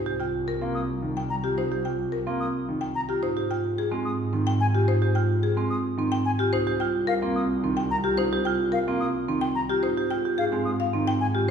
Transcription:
Already playing: double bass section C2, marimba D#4 C5
0.06 marimba G4
0.20 marimba F4 G5
0.48 marimba A#4
0.61 grand piano A#3, marimba C4
0.75 flute D#6
1.02 grand piano D#3
1.17 marimba G5
1.30 flute A#5
1.44 marimba F4 G4
1.58 marimba D#4 C5
1.72 marimba G4
1.85 marimba F4 G5
2.12 marimba A#4
2.27 grand piano A#3, marimba C4
2.40 flute D#6
2.69 grand piano D#3
2.81 marimba G5
2.95 flute A#5
3.09 marimba F4 G4
3.23 double bass section G#2, marimba D#4 C5
3.37 marimba G4
3.51 marimba F4 G5
3.78 marimba G#4
3.91 grand piano G#3, marimba C4
4.05 flute D#6
4.33 grand piano D#3, marimba C4
4.47 marimba G5
4.60 flute G#5
4.74 marimba F4 G4
4.88 marimba D#4 C5
5.02 marimba G4
5.15 marimba F4 G5
5.43 marimba G#4
5.57 grand piano G#3, marimba C4
5.70 flute D#6
5.98 grand piano D#3, marimba C4
6.12 marimba G5
6.25 flute G#5
6.39 marimba F4 G4
6.53 double bass section C2, marimba D#4 C5
6.67 marimba G4
6.80 marimba F4 G5
7.07 marimba A#4, flute F5
7.22 grand piano A#3, marimba C4
7.36 flute D#6
7.64 grand piano D#3, marimba C4
7.77 marimba G5
7.91 flute A#5
8.04 marimba F4 G4
8.18 marimba D#4 C5
8.33 marimba G4
8.45 marimba F4 G5
8.72 marimba A#4, flute F5
8.88 grand piano A#3, marimba C4
9.00 flute D#6
9.28 grand piano D#3, marimba C4
9.41 marimba G5
9.55 flute A#5
9.70 marimba F4 G4
9.83 double bass section G#2, marimba D#4 C5
9.97 marimba G4
10.10 marimba F4 G5
10.25 marimba G4
10.38 marimba G#4, flute F5
10.52 grand piano G#3, marimba C4
10.65 flute D#6
10.80 marimba F5
10.93 grand piano D#3, marimba C4
11.07 marimba G5
11.21 flute G#5
11.34 marimba F4 G4

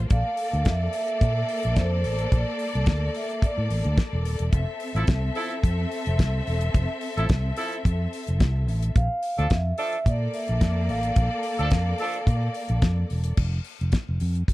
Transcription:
0.09 fingered electric bass A#1, string section A#3 A4 D5, vibraphone F5, kick, closed hi-hat
0.37 open hi-hat
0.53 fingered electric bass D2, closed hi-hat
0.65 fingered electric bass F2, vibraphone E5, kick, snare, closed hi-hat
0.93 vibraphone E5, open hi-hat
1.08 closed hi-hat
1.21 fingered electric bass A#2, kick, closed hi-hat
1.49 open hi-hat
1.63 fingered electric bass A#1, closed hi-hat
1.76 fingered electric bass F2, vibraphone C5, kick, snare, closed hi-hat
2.04 fingered electric bass A1, open hi-hat
2.18 closed hi-hat
2.32 fingered electric bass A#1, vibraphone D5, kick, closed hi-hat
2.59 open hi-hat
2.75 fingered electric bass C2, closed hi-hat
2.86 fingered electric bass D2, kick, snare, closed hi-hat
3.14 vibraphone E5, open hi-hat
3.30 closed hi-hat
3.42 vibraphone D5, kick, closed hi-hat
3.58 fingered electric bass A2
3.70 fingered electric bass A1, open hi-hat
3.84 fingered electric bass D2, closed hi-hat
3.98 kick, snare, closed hi-hat
4.13 fingered electric bass E1
4.25 fingered electric bass D#1, open hi-hat
4.39 fingered electric bass E1, closed hi-hat
4.53 fingered electric bass F1, string section C4 A4 E5, kick, closed hi-hat
4.80 open hi-hat
4.95 fingered electric bass A1, horn section F3 E4 A4, closed hi-hat
5.07 fingered electric bass C2, kick, snare, closed hi-hat
5.35 horn section F3 E4 A4, open hi-hat
5.51 closed hi-hat
5.64 fingered electric bass F2, kick, closed hi-hat
5.92 open hi-hat
6.06 fingered electric bass F1, closed hi-hat
6.19 fingered electric bass C2, kick, snare, closed hi-hat
6.47 fingered electric bass E1, open hi-hat
6.61 closed hi-hat
6.74 fingered electric bass F1, kick, closed hi-hat
7.01 open hi-hat
7.17 fingered electric bass A1, horn section F3 E4 A4, closed hi-hat
7.29 fingered electric bass C2, kick, snare, closed hi-hat
7.56 horn section F3 E4 A4, open hi-hat
7.72 closed hi-hat
7.85 fingered electric bass F2, kick, closed hi-hat
8.13 open hi-hat
8.27 fingered electric bass F1, closed hi-hat
8.40 fingered electric bass C2, kick, snare, closed hi-hat
8.68 fingered electric bass A1, open hi-hat
8.82 closed hi-hat
8.96 fingered electric bass A#1, vibraphone F5, kick, closed hi-hat
9.23 open hi-hat
9.38 fingered electric bass D2, horn section F3 D4 A4, closed hi-hat
9.50 fingered electric bass F2, vibraphone E5, kick, snare, closed hi-hat
9.78 horn section F3 D4 A4, vibraphone E5, open hi-hat
9.93 closed hi-hat
10.06 fingered electric bass A#2, string section A#3 A4 D5, vibraphone D5, kick, closed hi-hat
10.34 vibraphone E5, open hi-hat
10.48 fingered electric bass A#1, closed hi-hat
10.61 fingered electric bass F2, kick, snare, closed hi-hat
10.89 fingered electric bass A1, vibraphone F5, open hi-hat
11.03 closed hi-hat
11.16 fingered electric bass A#1, kick, closed hi-hat
11.43 open hi-hat
11.59 fingered electric bass D2, horn section F3 D4 A4, closed hi-hat
11.70 fingered electric bass F2, kick, snare, closed hi-hat
11.98 horn section F3 D4 A4, open hi-hat
12.14 closed hi-hat
12.27 fingered electric bass A#2, kick, closed hi-hat
12.54 open hi-hat
12.69 fingered electric bass A#1, closed hi-hat
12.82 fingered electric bass F2, kick, snare, closed hi-hat
13.10 fingered electric bass E1, open hi-hat
13.24 closed hi-hat
13.37 fingered electric bass F1, kick, crash
13.64 open hi-hat
13.81 fingered electric bass F1, closed hi-hat
13.92 kick, snare, closed hi-hat
14.09 fingered electric bass F1
14.20 fingered electric bass F2, open hi-hat
14.35 closed hi-hat
14.48 muted fingered electric bass stroke, kick, closed hi-hat

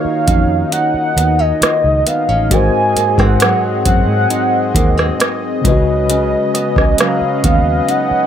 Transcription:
Already playing: tine electric piano D#3 A#3 D#4 F4 F#4 C#5, nylon-string guitar D#3 C#4 F4, analog synth pad D#4 C#5, soft synth lead F5
0.05 muted fingered electric bass stroke
0.27 fingered electric bass F2, nylon-string guitar C#4, kick, closed hi-hat
0.72 nylon-string guitar D#4, analog synth pad D#5, soft synth lead F#5, closed hi-hat
0.94 muted fingered electric bass stroke
1.17 fingered electric bass D#2, nylon-string guitar B3, closed hi-hat
1.39 nylon-string guitar C#4, soft synth lead D#5
1.61 nylon-string guitar F4, muted fingered electric bass stroke, cross-stick, closed hi-hat
1.84 fingered electric bass C#2
2.06 nylon-string guitar B3, soft synth lead F5, closed hi-hat
2.29 fingered electric bass A1, nylon-string guitar C#4
2.48 fingered electric bass G#1, tine electric piano G#2 G#3 F#4, nylon-string guitar G#2, analog synth pad C4 G#4, kick, closed hi-hat
2.52 tine electric piano A#4 C5, soft synth lead G#5
2.96 nylon-string guitar A#3, muted fingered electric bass stroke, closed hi-hat
3.18 fingered electric bass G#2, nylon-string guitar C4, soft synth lead F#5, kick, cross-stick
3.40 nylon-string guitar F#3, cross-stick, closed hi-hat
3.85 fingered electric bass F#2, nylon-string guitar C4, soft synth lead F#5, kick, closed hi-hat
4.08 fingered electric bass G#2
4.30 nylon-string guitar D#4, closed hi-hat
4.75 fingered electric bass D#2, nylon-string guitar A#3, kick, closed hi-hat
4.97 nylon-string guitar C4, cross-stick
5.20 nylon-string guitar D#4, cross-stick, closed hi-hat
5.62 fingered electric bass C#2, tine electric piano C#3 G#3 F4, nylon-string guitar C#3, analog synth pad C#4 B4, kick, closed hi-hat
5.67 tine electric piano B4 D#5
5.72 tine electric piano F#4
6.09 nylon-string guitar C#3, soft synth lead D#5, closed hi-hat
6.54 nylon-string guitar B3, synth pluck D#5, closed hi-hat
6.76 fingered electric bass C#2, kick, cross-stick
6.82 synth pluck G#5
6.98 nylon-string guitar F#3, soft synth lead F5, cross-stick, closed hi-hat
7.08 synth pluck A#5
7.21 muted fingered electric bass stroke
7.44 fingered electric bass D#2, nylon-string guitar B3, kick, closed hi-hat
7.89 nylon-string guitar D#4, soft synth lead F#5, closed hi-hat
8.11 muted fingered electric bass stroke

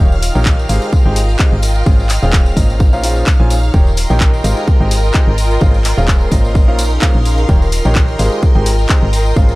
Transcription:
Already playing: string section D#4 C#5 F5, string machine F5 F6
0.00 fm bass D#1, grand piano D#3 D#4 G4 A#4 C#5 G5, string section F4
0.12 tambourine
0.19 string section D#5, open hi-hat, tambourine
0.31 grand piano D#3 D#4 G4 A#4 C#5 G5, string section A#4 G5
0.35 fm bass A#1, tambourine
0.45 kick, clap, tambourine
0.59 tambourine
0.69 fm bass G#1, grand piano G#3 D#4 G4 G#4 C5 F5, open hi-hat, tambourine
0.82 tambourine
0.93 kick, tambourine
1.05 fm bass G#1, grand piano G#3 D#4 G4 G#4 C5 G5
1.16 open hi-hat, tambourine
1.29 tambourine
1.39 grand piano D#4 G4 G#4 C5 G5, kick, clap, tambourine
1.52 fm bass G#1
1.63 open hi-hat, tambourine
1.75 tambourine
1.86 fm bass G#1, grand piano G#3 C#4 F4 G#4 C5 F5, kick, tambourine
2.00 tambourine
2.09 clap, open hi-hat, tambourine
2.23 fm bass D#1, grand piano G#3 C#4 F4 G#4 C5 F5, tambourine
2.33 kick, clap, tambourine
2.46 tambourine
2.57 fm bass G#1, grand piano A#2 C#4 F4 A#4 C5 D#5, kick, open hi-hat, tambourine
2.70 tambourine
2.80 string section D#4, kick, tambourine
2.90 fm bass A#1, grand piano A#2 C#4 F4 A#4 C5 F5, string section G#4, tambourine
3.03 grand piano A#2 C#4 F4 A#4 C5 F5, open hi-hat, tambourine
3.16 tambourine
3.23 string section C#5 F5, clap
3.27 kick, tambourine
3.40 fm bass A#1, grand piano A#2 C#4 F4 A#4 C5 G#5
3.50 open hi-hat, tambourine
3.63 tambourine
3.74 fm bass D#1, grand piano D#3 D#4 G4 A#4 C#5 G5, string section F4, string machine A#4 C6, kick, tambourine
3.87 tambourine
3.94 string section A#4, open hi-hat, tambourine
4.06 fm bass A#1, grand piano D#3 D#4 G4 A#4 C#5 G5, string section D#5 G5
4.11 tambourine
4.20 kick, clap, tambourine
4.34 tambourine
4.44 fm bass G#1, grand piano G#3 D#4 G4 G#4 C5 F5, open hi-hat, tambourine
4.57 tambourine
4.68 kick, tambourine
4.80 fm bass G#1, grand piano G#3 D#4 G4 G#4 C5 G5
4.91 open hi-hat, tambourine
5.04 tambourine
5.14 grand piano D#4 G4 G#4 C5 G5, kick, clap, tambourine
5.27 fm bass G#1
5.38 open hi-hat, tambourine
5.51 tambourine
5.61 fm bass G#1, grand piano G#3 C#4 F4 G#4 C5 F5, kick, tambourine
5.74 tambourine
5.84 clap, open hi-hat, tambourine
5.98 fm bass D#1, grand piano G#3 C#4 F4 G#4 C5 F5, tambourine
6.08 kick, clap, tambourine
6.21 tambourine
6.32 fm bass G#1, grand piano A#2 C#4 F4 A#4 C5 D#5, kick, open hi-hat, tambourine
6.45 tambourine
6.55 string section D#4, kick, tambourine
6.68 fm bass A#1, grand piano A#2 C#4 F4 A#4 C5 F5, string section C#4
6.79 open hi-hat, tambourine
6.90 tambourine
6.98 string section G#4 F5, clap, tambourine
7.02 grand piano A#2 C#4 F4 A#4 C5 F5, kick
7.15 fm bass A#1
7.25 open hi-hat, tambourine
7.38 tambourine
7.49 fm bass D#1, grand piano D#3 D#4 G4 A#4 C#5 G5, string section F4, kick, tambourine
7.62 tambourine
7.68 string section A#4
7.72 open hi-hat, tambourine
7.79 string section D#5 G5
7.85 fm bass A#1, grand piano D#3 D#4 G4 A#4 C#5 G5, tambourine
7.95 kick, clap, tambourine
8.08 tambourine
8.19 fm bass G#1, grand piano G#3 D#4 G4 G#4 C5 F5, open hi-hat, tambourine
8.32 tambourine
8.43 kick, tambourine
8.55 fm bass G#1, grand piano G#3 D#4 G4 G#4 C5 G5
8.66 open hi-hat, tambourine
8.79 tambourine
8.89 grand piano D#4 G4 G#4 C5 G5, kick, clap, tambourine
9.02 fm bass G#1
9.13 open hi-hat, tambourine
9.26 tambourine
9.36 fm bass G#1, grand piano G#3 C#4 F4 G#4 C5 F5, kick, tambourine
9.49 tambourine

